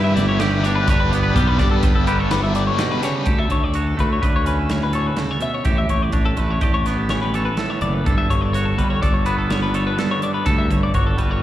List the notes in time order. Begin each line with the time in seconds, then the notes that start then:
Already playing: G2 G3 B3 D4 E4 G4
0.04 E5
0.15 G1 B3 E4 G4 D5, snare, closed hi-hat
0.28 C#5
0.39 G2 G3 B3 E4 G4 D5, snare, closed hi-hat
0.51 B4
0.64 B3 D4 E4 G4 C#5, closed hi-hat
0.76 B4
0.88 G1 G2 G3 B3 D4 G4 B4 C#5, kick, closed hi-hat
1.00 B4
1.11 B3 D4 G4, closed hi-hat
1.23 B4
1.36 B1 G3 B3 D4 G4, kick, closed hi-hat
1.48 B4
1.59 G2 B3 D4 G4 D5, kick, snare, closed hi-hat
1.71 A4
1.83 G1 B4, kick, closed hi-hat
1.95 A4
2.07 D3 G4 B4, closed hi-hat
2.19 A4 C#5
2.30 G3 B3 D4 G4 B4, snare, closed hi-hat
2.43 E5
2.54 B3 D4 G4 D5, closed hi-hat
2.67 C#5
2.78 B2 G3 B3 D4 G4 D5, snare, closed hi-hat
2.92 B4
3.02 C#3 B3 D4 G4 C#5, snare, closed hi-hat
3.16 B4
3.26 D2 D3 G4 A4, kick, closed hi-hat
3.38 A4 E5
3.50 D2 C#5, kick, closed hi-hat
3.64 D5
3.74 F#4 C#5, closed hi-hat
3.88 A4
3.97 D2 A3 B4, kick, closed hi-hat
4.13 C#5
4.22 D2 B4 D5, kick, closed hi-hat
4.36 C#5
4.45 C#4 B4, closed hi-hat
4.59 A4
4.70 A2 C#5, snare, closed hi-hat
4.83 B4
4.93 A4 C#5, closed hi-hat
5.07 B4
5.16 C#3 A4, snare, closed hi-hat
5.31 C#5
5.40 B2 E5, closed hi-hat
5.54 C#5
5.64 A1 A2 G4 A4, kick, closed hi-hat
5.78 E5
5.89 A1 C#5, kick, closed hi-hat
6.02 D5
6.12 A1 D4 C#5, kick, closed hi-hat
6.26 A4
6.37 A1 A3 B4, kick, closed hi-hat
6.51 C#5
6.61 A1 G4 D5, kick, closed hi-hat
6.74 C#5
6.86 B3 B4, snare, closed hi-hat
6.98 A4
7.09 E3 C#5, snare, closed hi-hat
7.22 B4
7.34 A4 C#5, closed hi-hat
7.45 B4
7.57 A2 A4, snare, closed hi-hat
7.70 C#5
7.81 F#1 D5, closed hi-hat
7.94 B4
8.05 G1 G2 A4, kick, closed hi-hat
8.18 E5
8.30 G1 C#5, kick, closed hi-hat
8.41 D5
8.53 F#4 C#5, closed hi-hat
8.65 A4
8.78 G1 G3 B4, kick, closed hi-hat
8.90 C#5
9.02 G1 A4 D5, kick, closed hi-hat
9.14 C#5
9.26 B3 B4, closed hi-hat
9.38 A4
9.50 D3 C#5, snare, closed hi-hat
9.62 B4
9.74 A4 C#5, closed hi-hat
9.87 B4
9.98 G2 A4, snare, closed hi-hat
10.11 C#5
10.22 D5, closed hi-hat
10.34 B4
10.45 D2 G2 A4, kick, closed hi-hat
10.58 E5
10.71 G1 C#5, kick, closed hi-hat
10.83 D5
10.94 G1 F#4 C#5, kick, closed hi-hat
11.07 A4
11.17 G1 G3 B4, kick, closed hi-hat
11.31 C#5